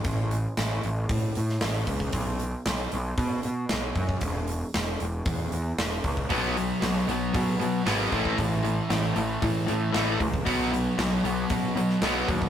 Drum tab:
HH |o-o-o-o-o-o-o-o-|o-o-o-o-o-o-o-o-|o-o-o-o-o-o-o-o-|o-o-o-o-o-o-o-o-|
SD |----o------oo---|----o-------o---|----o-------o---|----o-------o---|
BD |o-------o-----oo|o-------o-----oo|o-------o-----oo|o-------o-----oo|

HH |o-o-o-o-o-o-o-o-|o-o-o-o-o-o-o-o-|
SD |----o-------o---|----o------oo---|
BD |o-------o-----oo|o-------o-----oo|